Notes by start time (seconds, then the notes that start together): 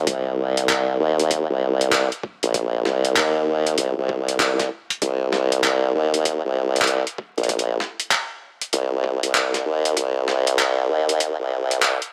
0.07 C2, kick, closed hi-hat
0.57 closed hi-hat
0.69 clap, closed hi-hat
1.00 D#2
1.19 closed hi-hat
1.31 kick, closed hi-hat
1.50 C2
1.81 closed hi-hat
1.92 clap, closed hi-hat
2.12 closed hi-hat
2.23 kick
2.43 A#1, closed hi-hat
2.54 kick, closed hi-hat
2.85 C2, snare
3.05 closed hi-hat
3.16 D#2, clap, closed hi-hat
3.67 closed hi-hat
3.78 C2, kick, closed hi-hat
3.98 C2
4.09 kick
4.28 closed hi-hat
4.40 C2, clap, closed hi-hat
4.59 kick, snare, closed hi-hat
4.90 closed hi-hat
5.02 C2, kick, closed hi-hat
5.33 snare
5.52 closed hi-hat
5.64 clap, closed hi-hat
5.95 D#2
6.14 closed hi-hat
6.25 kick, closed hi-hat
6.45 C2
6.76 closed hi-hat
6.82 clap
6.87 closed hi-hat
7.07 closed hi-hat
7.18 kick
7.37 A#1, closed hi-hat
7.43 closed hi-hat
7.49 kick, closed hi-hat
7.59 closed hi-hat
7.80 snare
8.00 closed hi-hat
8.11 clap, closed hi-hat
8.61 closed hi-hat
8.73 C2, kick, closed hi-hat
9.04 kick
9.23 C2, closed hi-hat
9.35 clap, closed hi-hat
9.54 kick, snare, closed hi-hat
9.66 D#2
9.85 closed hi-hat
9.97 C2, kick, closed hi-hat
10.28 snare
10.47 closed hi-hat
10.59 clap, closed hi-hat
10.89 D#2
11.09 closed hi-hat
11.20 kick, closed hi-hat
11.40 C2
11.71 closed hi-hat
11.82 clap, closed hi-hat
12.02 closed hi-hat